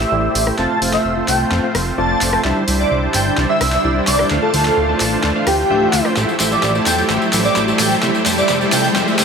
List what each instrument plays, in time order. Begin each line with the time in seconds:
Already playing: supersaw synth A3 E4 G4 C5, digital synth lead E5, riser
0.01 snare
0.12 analog synth bass A1, supersaw synth A3 E4 G4 C5 D5
0.35 analog synth bass A1, open hi-hat
0.47 supersaw synth A3 E4 G4 C5 G5, cross-stick
0.58 analog synth bass F1, supersaw synth A3 C4 F4 C5 F5, digital synth lead A5, snare
0.70 digital synth lead A5
0.82 analog synth bass F1, supersaw synth A3 C4 F4 C5 F5, open hi-hat
0.93 digital synth lead E5, snare
1.05 analog synth bass F1
1.17 supersaw synth A3 C4 F4 C5 A5
1.28 analog synth bass C2, digital synth lead G5, snare, open hi-hat
1.51 analog synth bass F1, snare
1.63 supersaw synth A3 C4 F4 C5 F5
1.75 analog synth bass F1, cross-stick, open hi-hat
1.98 analog synth bass F1, supersaw synth A3 C4 F4 C5 D5, digital synth lead A5
2.21 analog synth bass F1, snare, open hi-hat
2.33 supersaw synth A3 C4 F4 C5 G5, cross-stick
2.44 analog synth bass C2, supersaw synth G3 D4 E4 C5 E5, snare
2.68 analog synth bass C2, supersaw synth G3 D4 E4 C5 E5, open hi-hat
2.79 digital synth lead D5
2.91 analog synth bass C2
3.03 supersaw synth G3 D4 E4 C5 A5
3.14 analog synth bass G1, digital synth lead G5, snare, open hi-hat
3.38 analog synth bass C2, snare
3.49 supersaw synth G3 D4 E4 C5 E5, digital synth lead E5
3.61 analog synth bass C2, cross-stick, open hi-hat
3.72 digital synth lead E5, snare
3.84 analog synth bass C2, supersaw synth G3 D4 E4 C5 D5
4.07 analog synth bass C2, digital synth lead D5, snare, open hi-hat
4.19 supersaw synth G3 D4 E4 C5 G5, cross-stick
4.30 analog synth bass D2, supersaw synth A3 D4 F4 C5 F5, snare
4.42 digital synth lead A4
4.54 analog synth bass D2, supersaw synth A3 D4 F4 C5 F5, open hi-hat
4.65 snare
4.77 analog synth bass D2
4.89 supersaw synth A3 D4 F4 C5 A5
5.00 analog synth bass A1, snare, open hi-hat
5.24 analog synth bass D2, snare
5.35 supersaw synth A3 D4 F4 C5 F5
5.47 analog synth bass D2, digital synth lead G4, cross-stick, open hi-hat
5.58 digital synth lead G4
5.70 analog synth bass D1, supersaw synth A3 D4 F4 C5 E5
5.93 analog synth bass D2, snare, open hi-hat
6.05 supersaw synth A3 D4 F4 C5 G5, cross-stick
6.16 analog synth bass A1, supersaw synth A3 E4 G4 C5 E5, snare, tambourine
6.29 tambourine
6.40 analog synth bass A1, supersaw synth A3 E4 G4 C5 E5, snare, open hi-hat, tambourine
6.51 digital synth lead D5, tambourine
6.63 analog synth bass A1, snare, tambourine
6.75 supersaw synth A3 E4 G4 C5 A5, tambourine
6.86 analog synth bass E2, digital synth lead G5, snare, open hi-hat, tambourine
6.98 tambourine
7.09 analog synth bass A1, supersaw synth A3 E4 G4 C5 E5, snare, tambourine
7.22 tambourine
7.33 analog synth bass A1, supersaw synth A3 E4 G4 C5 E5, snare, open hi-hat, tambourine
7.44 digital synth lead D5, tambourine
7.56 analog synth bass A1, snare, tambourine
7.68 supersaw synth A3 E4 G4 C5 A5, tambourine
7.79 analog synth bass A1, digital synth lead G5, snare, open hi-hat, tambourine
7.91 tambourine
8.02 analog synth bass F1, supersaw synth F3 A3 C4 E4 G4 C5 E5, snare, tambourine
8.15 tambourine
8.26 analog synth bass F1, supersaw synth A3 E4 G4 C5 E5, snare, open hi-hat, tambourine
8.38 digital synth lead D5, tambourine
8.49 analog synth bass F1, snare, tambourine
8.61 supersaw synth A3 E4 G4 C5 A5, tambourine
8.72 analog synth bass C2, digital synth lead G5, snare, open hi-hat, tambourine
8.84 tambourine
8.95 analog synth bass F1, supersaw synth A3 E4 G4 C5 E5, snare, tambourine
9.08 tambourine
9.19 analog synth bass F1, supersaw synth A3 E4 G4 C5 E5, snare, open hi-hat, tambourine